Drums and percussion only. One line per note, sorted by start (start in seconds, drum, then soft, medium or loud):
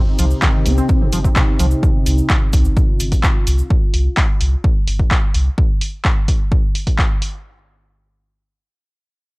0.19 open hi-hat loud
0.19 cabasa medium
0.31 cabasa medium
0.42 kick loud
0.42 clap loud
0.42 cabasa soft
0.66 open hi-hat loud
0.66 cabasa medium
0.78 cabasa medium
0.89 kick loud
0.89 cabasa soft
1.12 open hi-hat loud
1.12 cabasa medium
1.24 kick medium
1.24 cabasa soft
1.36 kick loud
1.36 clap loud
1.36 cabasa soft
1.59 open hi-hat loud
1.59 cabasa medium
1.71 cabasa soft
1.83 kick loud
1.83 cabasa soft
2.06 open hi-hat loud
2.06 cabasa medium
2.18 cabasa medium
2.30 kick loud
2.30 clap loud
2.30 cabasa soft
2.53 kick medium
2.53 open hi-hat loud
2.53 cabasa medium
2.65 cabasa medium
2.77 kick loud
2.77 cabasa soft
3.00 open hi-hat loud
3.00 cabasa medium
3.12 kick medium
3.12 open hi-hat medium
3.12 cabasa medium
3.23 kick loud
3.23 clap loud
3.23 cabasa soft
3.47 open hi-hat loud
3.47 cabasa medium
3.58 cabasa medium
3.70 kick loud
3.94 open hi-hat loud
4.17 kick loud
4.17 clap loud
4.41 open hi-hat loud
4.64 kick loud
4.88 open hi-hat loud
4.99 kick medium
5.11 kick loud
5.11 clap loud
5.34 open hi-hat loud
5.58 kick loud
5.81 open hi-hat loud
6.05 kick loud
6.05 clap loud
6.28 kick medium
6.28 open hi-hat loud
6.52 kick loud
6.75 open hi-hat loud
6.87 kick medium
6.87 open hi-hat medium
6.99 kick loud
6.99 clap loud
7.22 open hi-hat loud